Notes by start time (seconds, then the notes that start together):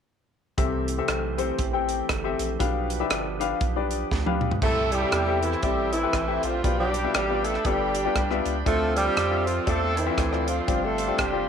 0.58 C2 C3 E3 A3 C4 G4 A4 E5, kick, closed hi-hat
0.88 closed hi-hat
0.98 C4 G4 A4 E5
1.08 B1, cross-stick, closed hi-hat
1.38 C4 G4 A4 C5, closed hi-hat
1.59 A1, kick, closed hi-hat
1.73 C4 G4 A4 G5
1.89 closed hi-hat
2.09 G1, kick, cross-stick, closed hi-hat
2.24 C4 G4 A4 E5
2.39 A#1, closed hi-hat
2.59 B1 B2 F3 B3 D4 G4 B4 F5, kick, closed hi-hat
2.90 closed hi-hat
3.00 D4 G4 B4 E5
3.10 G1, cross-stick, closed hi-hat
3.40 D4 G4 B4 F5, closed hi-hat
3.61 B1, kick, closed hi-hat
3.76 D4 G4 B4 D5
3.91 closed hi-hat
4.11 D2, kick, snare
4.26 D4 G4 B4 F5, high tom
4.41 mid tom
4.51 floor tom
4.62 C2 C3 A3 C4 E4 G4 A4 C5 E5 G5 A5, kick, crash
4.92 G3 E4 G4, closed hi-hat
5.02 C4 G4 A4 E5
5.12 E2, cross-stick, closed hi-hat
5.27 C4 G4 A4 E5
5.42 E3 E4, closed hi-hat
5.52 cross-stick
5.62 A1 G3 C4 E4 G4 A4 G5, kick, closed hi-hat
5.92 E3 G3 A3 E4, closed hi-hat
6.03 C4 G4 A4 B4
6.13 A1, kick, cross-stick, closed hi-hat
6.28 C4 G4 A4 E5
6.43 A#1 F3 D4 F4, closed hi-hat
6.64 B1 B2 B3 F4 G4 B4 D5 G5 B5, kick, closed hi-hat
6.80 G3 D4 G4
6.94 closed hi-hat
7.04 B3 F4 G4 E5
7.14 A1 G3 G4, cross-stick, closed hi-hat
7.30 B3 F4 G4 D5
7.45 A3 A4, closed hi-hat
7.54 cross-stick
7.65 G1 G3 B3 D4 F4 G4 A4, kick, closed hi-hat
7.95 closed hi-hat
8.05 B3 F4 G4 D5
8.16 C2, kick, cross-stick, closed hi-hat
8.30 B3 F4 G4 E5, cross-stick
8.46 C#2, closed hi-hat
8.66 D2 D3 A3 C4 F4 A4 C5 D5 A5 C6, kick, closed hi-hat
8.97 G3 C4 G4, closed hi-hat
9.05 C4 F4 A4 D5
9.17 F2, cross-stick, closed hi-hat
9.31 C4 F4 A4 E5
9.46 F3 F4, closed hi-hat
9.66 E2 A3 C4 D4 F4 A4 D5, kick, closed hi-hat
9.97 E3 A3 C4 E4, closed hi-hat
10.06 C4 F4 A4 E5
10.18 D2, kick, cross-stick, closed hi-hat
10.32 C4 F4 A4 D5, cross-stick
10.48 F3 C4 D4 F4, closed hi-hat
10.68 G1 G2 C4 F4 G4 D5 F5 G5, kick, closed hi-hat
10.84 A3 C4 F4 A4
10.98 closed hi-hat
11.07 C4 F4 G4 D5
11.19 F1 G3 G4, kick, cross-stick, closed hi-hat
11.33 C4 F4 G4 D5